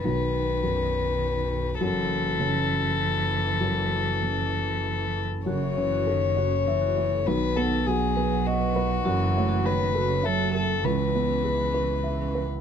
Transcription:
<<
  \new Staff \with { instrumentName = "Vibraphone" } { \time 3/4 \key fis \dorian \tempo 4 = 100 r2. | r2. | r2. | fis'16 e''16 cis''16 fis'16 cis''16 r16 fis'16 r8 fis'16 e''16 a'16 |
b'16 b''16 fis''16 b'16 fis''16 r16 b'16 fis''16 fis''16 b'16 b''16 dis''16 | fis'16 e''16 cis''16 fis'16 cis''16 r16 fis'16 cis''16 cis''16 fis'16 e''16 a'16 | cis'16 b'16 gis'16 cis'16 gis'16 r16 cis'16 gis'16 gis'16 cis'16 b'16 e'16 | }
  \new Staff \with { instrumentName = "Violin" } { \time 3/4 \key fis \dorian b'2. | a'2.~ | a'2~ a'8 r8 | cis''2. |
b'8 a'8 gis'4 fis'4~ | fis'4 b'4 a'8 a'8 | b'2~ b'8 r8 | }
  \new Staff \with { instrumentName = "Grand piano" } { \time 3/4 \key fis \dorian b,,4 fis,2 | fis,4 cis2 | fis,4 cis2 | fis,8 cis'8 a'8 cis''8 e''8 cis''8 |
b,,8 b8 fis'8 b'8 dis''8 b'8 | fis,8 a8 fis'8 a'8 e''8 a'8 | cis,8 b8 gis'8 b'8 e''8 b'8 | }
  \new Staff \with { instrumentName = "Cello" } { \clef bass \time 3/4 \key fis \dorian dis2. | e2.~ | e2~ e8 r8 | cis8 e8 dis8 cis8 e4 |
dis4 fis2 | e4 dis8 cis8 fis4 | e2~ e8 r8 | }
  \new Staff \with { instrumentName = "Double bass" } { \clef bass \time 3/4 \key fis \dorian b,,2. | fis,,2.~ | fis,,2. | fis,,2. |
b,,2. | fis,,2. | cis,2. | }
>>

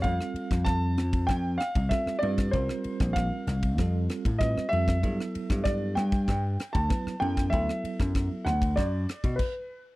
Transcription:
<<
  \new Staff \with { instrumentName = "Grand piano" } { \time 4/4 \key g \major \tempo 4 = 96 f''4 a''4 g''8 f''8 e''8 d''8 | c''4 f''2 ees''8 e''8~ | e''4 d''8 g''4~ g''16 a''8. g''8 | e''4. fis''8 d''4 b'8. r16 | }
  \new Staff \with { instrumentName = "Tine electric piano" } { \time 4/4 \key g \major <g c' f' a'>4. r4. <g c' f' a'>8 <g c' f' b'>8 | <g c' f' bes'>4. r8 <g c' f' a'>4 <g c' f' b'>8 <g c' f' a'>8 | <fis b e' a'>4. r4. <fis b e' b'>8 <fis b e' a'>8 | <fis b e' a'>4. r2 r8 | }
  \new Staff \with { instrumentName = "Slap bass" } { \clef bass \time 4/4 \key g \major f,16 r8 f,8. f,8 f,8 r16 c,16 r8 g,8 | c,16 r8 bes,,8 r16 c,8 f,8 r16 a,8 r16 f,8 | g,16 r8 g,8. g,8 g,8 r16 d,16 r8 fis,8 | d,16 r8 fis,8 r16 d,8 fis,8 r16 b,16 r4 | }
  \new DrumStaff \with { instrumentName = "Drums" } \drummode { \time 4/4 <bd cymr>16 ss16 cymr16 <bd cymr ss>16 <bd cymr ss>8 <cymr ss>16 <bd cymr>16 <bd cymr ss>8 <cymr ss>16 <bd cymr>16 <bd cymr ss>16 ss16 cymr16 <bd cymr ss>16 | <bd cymr>16 ss16 cymr16 <bd cymr ss>16 <bd cymr ss>8 <cymr ss>16 <bd cymr>16 <bd cymr ss>8 <cymr ss>16 <bd cymr>16 <bd cymr ss>16 ss16 cymr16 <bd cymr ss>16 | <bd cymr>16 ss16 cymr16 <bd cymr ss>16 <bd cymr ss>8 <cymr ss>16 <bd cymr>16 <bd cymr ss>8 <cymr ss>16 <bd cymr>16 <bd cymr ss>16 ss16 cymr16 <bd cymr ss>16 | <bd cymr>16 ss16 cymr16 <bd cymr ss>16 <bd cymr ss>8 <cymr ss>16 <bd cymr>16 <bd cymr ss>8 <cymr ss>16 <bd cymr>16 <cymc bd>4 | }
>>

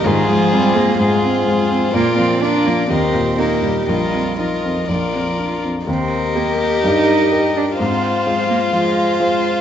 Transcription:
<<
  \new Staff \with { instrumentName = "Violin" } { \time 4/4 \key ees \major \tempo 4 = 126 c''2 c''2 | d''4 d''4 ees''4 ees''4 | ees''4 ees''4 d''4. r8 | ees''1 |
f''1 | }
  \new Staff \with { instrumentName = "Violin" } { \time 4/4 \key ees \major aes'2 aes'2 | bes'4 bes'4 bes'4 bes'4 | bes'4 bes'4 bes'4. r8 | bes'1 |
c''1 | }
  \new Staff \with { instrumentName = "Viola" } { \time 4/4 \key ees \major f'2 f'2 | f'4 f'4 g'4 g'4 | f'4 f'4 f'4. r8 | g'1 |
f'1 | }
  \new Staff \with { instrumentName = "Cello" } { \time 4/4 \key ees \major ees8 f8 g8 bes8 aes8 r4. | bes8 c'8 d'8 bes8 c'4 bes8 g8 | g4 f2 r4 | c'4 bes4 ees'4. d'8 |
c'4. bes8 aes4. r8 | }
  \new Staff \with { instrumentName = "Grand piano" } { \clef bass \time 4/4 \key ees \major aes,8 aes8 c'8 aes8 aes,8 c'8 aes8 c'8 | bes,8 f8 d'8 f8 ees,8 bes,8 ees'8 bes,8 | bes,,8 f,8 ees'8 f,8 bes,,8 f,8 d'8 f,8 | ees,4 <g' bes'>4 g,4 <g' bes'>4 |
aes,4 <aes f' c''>4 f4 <aes f' c''>4 | }
>>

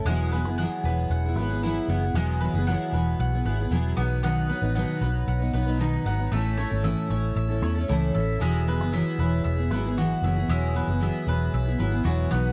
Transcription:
<<
  \new Staff \with { instrumentName = "Mandolin" } { \time 4/4 \key e \major \tempo 4 = 115 <gis fis''>8 b'8 fis''8 b'8 fis''8 b'8 e'8 fis''8 | <gis fis''>8 b'8 fis''8 b'8 fis''8 b'8 e'8 b8 | <b fis''>8 b'8 fis''8 b'8 fis''8 b'8 dis'8 fis''8 | <a e''>8 cis''8 e''8 cis''8 e''8 cis''8 e'8 e''8 |
<gis e''>8 b'8 e''8 b'8 e''8 b'8 fis'8 e''8 | <gis e''>8 b'8 e''8 b'8 e''8 b'8 fis'8 b8 | }
  \new Staff \with { instrumentName = "Steel-string acoustic guitar" } { \time 4/4 \key e \major <e fis b e' gis'>8 <fis b e' gis'>16 <b e' gis'>16 <e fis b e' gis'>8 <fis b e' gis'>8. <b e' gis'>16 <fis b e' gis'>16 <b e' gis'>16 <e fis b e' gis'>8 <fis b e' gis'>16 <b e' gis'>16 | <e fis b e' gis'>8 <fis b e' gis'>16 <b e' gis'>16 <e fis b e' gis'>8 <fis b e' gis'>8. <b e' gis'>16 <fis b e' gis'>16 <b e' gis'>16 <e fis b e' gis'>8 <fis b dis' b'>8 | <b, dis fis b dis' b'>8 <fis b dis' b'>16 <fis b dis' b'>16 <b, dis fis b dis' b'>8 <fis b dis' b'>8. <fis b dis' b'>16 <fis b dis' b'>16 <fis b dis' b'>16 <b, dis fis b dis' b'>8 <fis b dis' b'>16 <fis b dis' b'>16 | <a, e a cis' e' a'>8 <a cis' e' a'>16 <a cis' e' a'>16 <a, e a cis' e' a'>8 <a cis' e' a'>8. <a cis' e' a'>16 <a cis' e' a'>16 <a cis' e' a'>16 <a, e a cis' e' a'>8 <a cis' e' a'>8 |
<e fis b e' gis'>8 <fis b e' gis'>16 <b e' gis'>16 <e fis b e' gis'>8 <fis b e' gis'>8. <b e' gis'>16 <fis b e' gis'>16 <b e' gis'>16 <e fis b e' gis'>8 <fis b e' gis'>16 <b e' gis'>16 | <e fis b e' gis'>8 <fis b e' gis'>16 <b e' gis'>16 <e fis b e' gis'>8 <fis b e' gis'>8. <b e' gis'>16 <fis b e' gis'>16 <b e' gis'>16 <e fis b e' gis'>8 <fis b dis' b'>8 | }
  \new Staff \with { instrumentName = "Fingered electric bass" } { \clef bass \time 4/4 \key e \major e,,8. fis,,8 r16 e,,8 e,,8 gis,,4 fis,,8 | e,,8. fis,,8 r16 e,,8 b,,8 gis,,8 e,,8 b,,8~ | b,,8. a,,8 r16 b,,8 b,,8 b,,4 gis,,8 | a,,8. gis,,8 r16 a,,8 a,,8 e,8 cis,8 a,,8 |
e,,8. fis,,8 r16 e,,8 e,,8 gis,,4 fis,,8 | e,,8. fis,,8 r16 e,,8 b,,8 gis,,8 e,,8 b,,8 | }
>>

